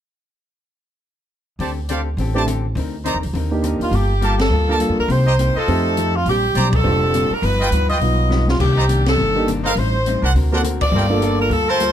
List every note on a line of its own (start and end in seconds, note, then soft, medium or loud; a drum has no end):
1.59 2.14 D2 medium
1.59 1.78 D3 soft
1.59 1.79 C4 soft
1.59 1.71 G4 medium
1.59 1.79 G4 soft
1.59 1.79 A4 soft
1.59 1.72 C5 medium
1.59 1.71 D5 medium
1.59 1.71 A5 medium
1.59 open hi-hat soft
1.89 2.08 D3 medium
1.89 2.08 C4 medium
1.89 2.01 G4 medium
1.89 2.08 G4 medium
1.89 2.08 A4 medium
1.89 2.01 C5 medium
1.89 2.01 D5 medium
1.89 2.01 F5 medium
1.89 closed hi-hat soft
2.17 2.73 A1 medium
2.17 2.36 D3 soft
2.17 2.37 C4 soft
2.17 2.38 G4 soft
2.17 open hi-hat soft
2.22 2.38 A4 soft
2.34 2.45 A3 medium
2.34 2.45 C4 medium
2.34 2.46 D4 medium
2.34 2.43 G4 medium
2.34 2.46 G4 medium
2.34 2.43 C5 medium
2.34 2.43 D5 medium
2.34 2.43 A5 medium
2.46 2.65 D3 medium
2.46 2.66 C4 medium
2.46 2.66 G4 medium
2.46 2.66 A4 medium
2.46 closed hi-hat medium
2.75 3.12 D2 medium
2.75 2.94 D3 soft
2.75 2.95 C4 medium
2.75 2.96 D#4 medium
2.75 open hi-hat soft
2.79 2.96 A#4 medium
3.05 3.24 D3 medium
3.05 3.24 C4 medium
3.05 3.17 D#4 medium
3.05 3.24 D#4 medium
3.05 3.25 A#4 medium
3.05 3.17 C5 medium
3.05 3.17 D5 medium
3.05 3.17 A#5 medium
3.05 closed hi-hat soft
3.14 3.24 D#2 medium
3.23 3.33 C#2 medium
3.23 open hi-hat soft
3.33 3.77 D#2 medium
3.33 3.53 D3 soft
3.33 3.53 C4 soft
3.33 3.54 D#4 soft
3.33 3.54 A#4 medium
3.33 open hi-hat soft
3.51 3.90 A#3 medium
3.51 3.90 D4 soft
3.51 3.90 D#4 soft
3.51 3.91 G4 medium
3.62 3.82 D3 medium
3.62 3.82 C4 medium
3.62 3.83 D#4 medium
3.62 3.83 A#4 medium
3.62 closed hi-hat soft
3.80 3.91 D2 medium
3.80 3.93 F4 medium
3.80 open hi-hat soft
3.91 4.47 G1 medium
3.91 4.11 G3 soft
3.91 4.12 A#3 soft
3.91 4.12 F4 soft
3.91 4.40 G4 medium
3.91 open hi-hat soft
3.95 4.13 A4 soft
4.21 4.40 G3 medium
4.21 4.41 A#3 medium
4.21 4.41 F4 medium
4.21 4.34 G4 medium
4.21 4.41 A4 medium
4.21 4.34 A#4 medium
4.21 4.34 F5 medium
4.21 4.34 A5 medium
4.21 closed hi-hat soft
4.39 4.94 A4 medium
4.39 snare medium
4.39 ride medium
4.50 4.87 D2 medium
4.50 4.70 G3 soft
4.50 4.70 A#3 soft
4.50 4.71 F4 soft
4.54 4.71 A4 soft
4.69 5.07 A#3 medium
4.69 5.07 D4 soft
4.69 5.08 F4 soft
4.69 4.77 G4 medium
4.69 5.08 A4 medium
4.69 4.77 A#4 medium
4.69 4.77 F5 medium
4.69 4.77 A5 medium
4.80 4.99 G3 medium
4.80 4.99 A#3 medium
4.80 4.99 F4 medium
4.80 5.00 A4 medium
4.80 closed hi-hat medium
4.89 4.98 F2 medium
4.99 5.08 D2 medium
4.99 5.11 A#4 medium
5.08 5.52 C2 medium
5.08 5.28 C3 soft
5.08 5.28 A#3 soft
5.08 5.29 D#4 soft
5.08 5.29 G4 soft
5.08 5.57 C5 medium
5.08 open hi-hat soft
5.27 5.35 G4 medium
5.27 5.35 C5 medium
5.27 5.35 D#5 medium
5.27 5.35 A#5 medium
5.39 5.57 C3 medium
5.39 5.58 A#3 medium
5.39 5.58 D#4 medium
5.39 5.58 G4 medium
5.39 closed hi-hat soft
5.55 5.95 F4 medium
5.55 6.15 A4 medium
5.55 5.95 C5 medium
5.55 5.95 D#5 medium
5.55 5.95 A5 medium
5.55 muted upright bass stroke soft
5.68 6.23 F2 medium
5.68 5.87 F3 soft
5.68 6.11 A3 medium
5.68 6.11 C4 medium
5.68 5.87 C4 soft
5.68 6.11 D#4 medium
5.68 5.88 D#4 soft
5.68 6.12 G4 medium
5.68 5.88 A4 soft
5.68 open hi-hat soft
5.97 6.16 F3 medium
5.97 6.16 C4 medium
5.97 6.17 D#4 medium
5.97 6.17 A4 medium
5.97 closed hi-hat medium
6.16 6.27 F4 medium
6.26 6.53 A#1 medium
6.26 6.45 A#2 soft
6.26 6.46 G3 soft
6.26 6.46 C4 soft
6.26 6.71 G4 loud
6.26 open hi-hat soft
6.30 6.47 D4 soft
6.55 6.82 B1 medium
6.55 6.75 A#2 medium
6.55 6.75 G3 medium
6.55 6.75 C4 medium
6.55 6.76 D4 medium
6.55 6.68 G4 medium
6.55 6.68 C5 medium
6.55 6.68 D5 medium
6.55 6.68 A#5 medium
6.55 closed hi-hat soft
6.73 7.32 A4 medium
6.73 kick medium
6.73 ride medium
6.84 7.28 F1 medium
6.84 7.03 A#2 soft
6.84 7.03 G3 soft
6.84 7.27 C4 medium
6.84 7.04 C4 soft
6.84 7.27 D4 soft
6.84 7.04 D4 soft
6.84 7.28 F4 soft
6.84 7.28 G4 medium
7.14 7.32 A#2 medium
7.14 7.33 G3 medium
7.14 7.33 C4 medium
7.14 7.33 D4 medium
7.14 closed hi-hat medium
7.30 7.44 A#4 medium
7.30 muted upright bass stroke soft
7.42 7.70 G1 medium
7.42 7.61 G2 soft
7.42 7.62 F3 soft
7.42 7.62 B3 medium
7.42 7.63 D#4 soft
7.42 7.90 B4 loud
7.42 open hi-hat soft
7.61 7.69 F4 medium
7.61 7.68 B4 medium
7.61 7.68 D#5 medium
7.61 7.68 G5 medium
7.71 7.99 D2 medium
7.71 7.91 G2 medium
7.71 7.91 F3 medium
7.71 7.92 B3 medium
7.71 7.92 D#4 medium
7.71 closed hi-hat soft
7.89 7.98 F4 medium
7.89 7.98 B4 medium
7.89 7.97 D#5 medium
7.89 8.44 D#5 medium
7.89 7.98 G5 medium
7.89 open hi-hat soft
7.99 8.56 B1 medium
7.99 8.19 G2 soft
7.99 8.20 F3 soft
7.99 8.44 B3 soft
7.99 8.20 B3 soft
7.99 8.44 D#4 soft
7.99 8.45 F4 soft
7.99 open hi-hat soft
8.04 8.21 D#4 soft
8.29 8.48 G2 medium
8.29 8.49 F3 medium
8.29 8.49 B3 medium
8.29 8.49 D#4 medium
8.29 snare soft
8.48 8.60 F4 medium
8.48 snare medium
8.59 9.15 C2 medium
8.59 8.78 C3 soft
8.59 8.78 D#3 soft
8.59 8.79 A#3 soft
8.59 8.79 D4 soft
8.59 9.04 G4 medium
8.59 kick medium
8.59 crash medium
8.77 8.85 D#4 medium
8.77 8.85 C5 medium
8.77 8.85 D5 medium
8.77 8.85 A#5 medium
8.88 9.07 C3 medium
8.88 9.08 D#3 medium
8.88 9.08 A#3 medium
8.88 9.08 D4 medium
8.88 closed hi-hat soft
9.06 9.50 A4 medium
9.06 snare medium
9.06 ride medium
9.17 9.73 G1 medium
9.17 9.37 C3 soft
9.17 9.37 D#3 soft
9.17 9.38 A#3 soft
9.21 9.38 D4 soft
9.35 9.46 A#3 medium
9.35 9.46 D4 medium
9.35 9.46 D#4 medium
9.35 9.46 G4 medium
9.48 9.66 C3 medium
9.48 9.66 D#3 medium
9.48 9.67 A#3 medium
9.48 9.67 D4 medium
9.48 closed hi-hat medium
9.64 9.72 D#4 medium
9.64 9.72 A4 medium
9.64 9.77 A#4 medium
9.64 9.72 C5 medium
9.64 9.72 F5 medium
9.76 10.19 A1 medium
9.76 9.95 A2 soft
9.76 9.96 G3 soft
9.76 10.24 C5 medium
9.76 open hi-hat soft
9.80 9.97 C4 soft
9.80 9.97 D#4 medium
10.06 10.25 A2 medium
10.06 10.25 G3 medium
10.06 10.25 C4 medium
10.06 10.26 D#4 medium
10.06 closed hi-hat soft
10.22 10.33 C2 medium
10.22 10.31 D4 medium
10.22 10.31 A#4 medium
10.22 10.31 C5 medium
10.22 10.31 F#5 medium
10.34 10.90 D2 medium
10.34 10.53 D3 soft
10.34 10.54 C4 medium
10.34 10.54 F#4 soft
10.34 open hi-hat soft
10.38 10.55 A#4 medium
10.52 10.63 A#3 medium
10.52 10.63 C4 soft
10.52 10.61 D4 medium
10.52 10.63 F#4 medium
10.52 10.63 A4 medium
10.52 10.61 A#4 medium
10.52 10.61 C5 medium
10.52 10.61 F#5 medium
10.63 10.82 D3 medium
10.63 10.83 C4 medium
10.63 10.83 F#4 medium
10.63 10.83 A#4 medium
10.63 closed hi-hat medium
10.81 11.36 D5 medium
10.81 kick medium
10.81 ride medium
10.92 11.48 G1 medium
10.92 11.11 G3 soft
10.92 11.12 A#3 soft
10.92 11.05 F4 medium
10.92 11.12 F4 soft
10.92 11.05 A4 medium
10.92 11.13 A4 soft
10.92 11.05 A#4 medium
10.92 11.05 G5 medium
11.09 11.48 A#3 medium
11.09 11.49 D4 medium
11.09 11.49 F4 medium
11.09 11.49 A4 medium
11.22 11.41 G3 medium
11.22 11.41 A#3 medium
11.22 11.41 F4 medium
11.22 11.41 A4 medium
11.22 closed hi-hat soft
11.41 11.51 A#4 medium
11.50 11.92 D2 medium
11.50 11.69 G3 soft
11.50 11.70 A#3 soft
11.50 11.71 F4 soft
11.50 11.69 A4 medium
11.50 open hi-hat soft
11.54 11.71 A4 medium
11.68 11.92 F4 medium
11.68 11.92 A4 medium
11.68 11.92 A#4 medium
11.68 11.92 C5 loud
11.68 11.92 A5 medium
11.80 11.92 G3 medium
11.80 11.92 A#3 medium
11.80 11.92 F4 medium
11.80 11.92 A4 medium
11.80 closed hi-hat medium